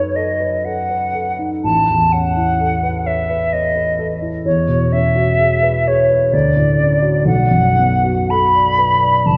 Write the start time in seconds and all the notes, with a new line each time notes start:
Already playing: F#2 F#3 C#4 D#4 A4 B4 C#5
0.16 A4 D#5
0.40 B4
0.65 A4 F#5
0.90 B4
1.14 A4
1.39 D#4
1.64 A1 A5
1.89 E2
2.12 C#4 F#5
2.37 E4
2.60 A4
2.83 B4
3.06 C#5 E5
3.30 B4
3.53 C#5 D#5
3.76 B4
3.99 A4
4.22 E4
4.45 E2 C#5
4.68 B2
4.91 C#4 E5
5.16 F#4
5.39 G#4
5.63 B4
5.87 G#4 C#5
6.10 B4
6.33 D2 D5
6.56 A2
6.79 C#4
7.02 F#4
7.25 B1 F#5
7.51 F#2
7.78 B3
8.04 F#4
8.30 A4 B5
8.55 D5
8.78 B4
9.02 D5
9.26 F#1 A5